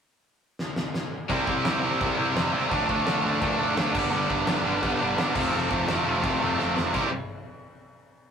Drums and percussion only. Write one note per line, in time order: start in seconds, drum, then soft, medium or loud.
0.59 snare medium
0.76 snare medium
0.94 snare medium
1.29 kick loud
1.29 crash medium
1.47 kick loud
1.65 snare loud
1.65 crash medium
2.01 kick loud
2.01 crash medium
2.37 snare loud
2.37 crash medium
2.71 kick loud
2.71 crash medium
2.89 kick loud
3.07 snare loud
3.07 crash medium
3.42 kick loud
3.42 crash medium
3.77 snare loud
3.77 crash medium
3.95 kick loud
3.95 crash loud
4.13 crash medium
4.30 kick loud
4.47 snare loud
4.47 crash medium
4.83 kick loud
4.83 crash medium
5.18 snare loud
5.18 crash medium
5.36 kick loud
5.36 crash loud
5.53 crash medium
5.71 kick loud
5.88 snare loud
5.88 crash medium
6.24 kick loud
6.24 crash medium
6.59 snare medium
6.77 snare medium
6.94 kick loud
6.94 crash medium